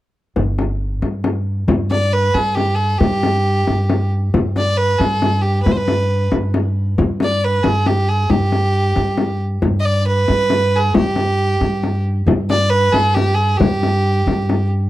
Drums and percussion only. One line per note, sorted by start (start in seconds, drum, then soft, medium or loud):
0.36 frame drum medium
0.58 frame drum medium
1.02 frame drum medium
1.24 frame drum medium
1.68 frame drum medium
1.91 frame drum medium
2.35 frame drum medium
2.57 frame drum medium
3.00 frame drum medium
3.23 frame drum medium
3.67 frame drum medium
3.90 frame drum medium
4.34 frame drum medium
4.56 frame drum medium
5.01 frame drum medium
5.22 frame drum medium
5.66 frame drum medium
5.88 frame drum medium
6.32 frame drum medium
6.54 frame drum medium
6.98 frame drum medium
7.20 frame drum medium
7.64 frame drum medium
7.86 frame drum medium
8.30 frame drum medium
8.52 frame drum medium
8.96 frame drum medium
9.18 frame drum medium
9.62 frame drum medium
10.28 frame drum medium
10.50 frame drum medium
10.94 frame drum medium
11.16 frame drum medium
11.61 frame drum medium
11.83 frame drum medium
12.28 frame drum medium
12.50 frame drum medium
12.94 frame drum medium
13.17 frame drum medium
13.60 frame drum medium
13.83 frame drum medium
14.27 frame drum medium
14.49 frame drum medium